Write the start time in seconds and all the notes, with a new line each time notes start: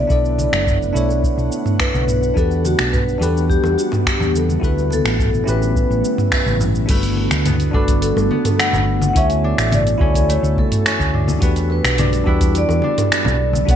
Already playing: D3 A3 B3 D4 E4 A4 B4 C#5
0.07 B1 D4 E4 A4 D5 F#5, kick, shaker
0.12 D5
0.25 shaker
0.39 high conga, shaker
0.52 F#1, finger snap, shaker
0.67 kick, mid tom, shaker
0.82 shaker
0.93 B1 D4 E4 A4, shaker
0.97 C#5
1.09 high bongo, shaker
1.24 kick, shaker
1.38 B1, shaker
1.52 shaker
1.66 mid tom, shaker
1.80 B4, finger snap, kick, shaker
1.94 B1, high conga, shaker
2.08 mid tom, shaker
2.23 shaker
2.34 E2 E3 G3 B3 D4 F#4 G4 A4, kick, shaker
2.39 B4
2.51 shaker
2.65 F#4, high bongo, high conga, shaker
2.79 B1, finger snap, shaker
2.93 B4, kick, mid tom, shaker
3.09 shaker
3.18 E2 D4 F#4 G4 A4
3.22 B4, shaker
3.37 shaker
3.50 G4, kick, shaker
3.64 E2, high bongo, shaker
3.78 F#4, shaker
3.92 mid tom, high bongo, shaker
4.06 G4, finger snap, kick, shaker
4.20 E2, low conga, shaker
4.34 A4, high conga, shaker
4.49 high conga, shaker
4.60 D2 D3 F#3 A3 E4 F#4 A4, kick, shaker
4.64 B4
4.78 shaker
4.90 A4, high conga, shaker
5.05 A1, finger snap, shaker
5.19 kick, mid tom, shaker
5.33 high conga, shaker
5.44 A1 C#4 E4 G4, shaker
5.49 B4
5.62 high bongo, shaker
5.76 C#3 G3 E4, kick, shaker
5.90 A1, shaker
6.05 shaker
6.18 mid tom, shaker
6.32 finger snap, kick, shaker
6.46 A1, high conga, shaker
6.60 mid tom, low conga, shaker
6.75 shaker
6.86 G1 D3 G3 A3 B3 D4 F#4 A4, kick, open hi-hat, crash, shaker
6.90 A3 B4
7.03 open hi-hat, shaker
7.17 high bongo
7.31 D2, finger snap, open hi-hat, shaker
7.45 B3, mid tom, open hi-hat, high conga, shaker
7.60 open hi-hat, shaker
7.71 G1 D4 F#4 A4, kick
7.76 B4
7.88 kick, open hi-hat, shaker
8.02 A4, open hi-hat, shaker
8.16 G1, high bongo, shaker
8.31 B3, high conga
8.45 mid tom, open hi-hat, high bongo, shaker
8.59 A3 F#5, finger snap, open hi-hat, shaker
8.73 G1, low conga, shaker
9.02 high conga, shaker
9.09 F#5
9.13 D2 E3 C#4 E4 F#4 A4 C#5 E5, kick, open hi-hat, shaker
9.30 open hi-hat, shaker
9.44 D4
9.58 A1, finger snap, open hi-hat, shaker
9.72 D5, mid tom, open hi-hat, high conga, shaker
9.87 open hi-hat, shaker
9.98 D2 C#4 E4 F#4 A4, kick
10.03 C#5
10.15 kick, open hi-hat, high bongo, shaker
10.29 A3 C#5, open hi-hat, shaker
10.43 D2, shaker
10.57 A4, kick, high conga
10.72 mid tom, open hi-hat, shaker
10.86 C#4, finger snap, open hi-hat, shaker
11.00 D2, kick, shaker
11.14 D4, mid tom
11.28 high conga, shaker
11.39 E2 G3 B3 D4 F#4 G4, kick, open hi-hat, shaker
11.44 B4
11.56 open hi-hat, shaker
11.70 B4, high bongo
11.84 B1, finger snap, open hi-hat, shaker
11.98 D4, mid tom, open hi-hat, high conga, shaker
12.13 open hi-hat, shaker
12.24 E2 D4 E4 F#4 G4, kick
12.28 B4
12.41 kick, open hi-hat, shaker
12.55 D5, open hi-hat, shaker
12.69 E2, high bongo, shaker
12.82 D4, high conga
12.98 mid tom, open hi-hat, high bongo, shaker
13.12 B3, finger snap, open hi-hat, shaker
13.25 B1, low conga, shaker
13.39 D3 F#3 A3
13.53 high conga, shaker
13.65 B1 B3 D4 F#4 A4, kick, open hi-hat
13.69 C#5 F#5, shaker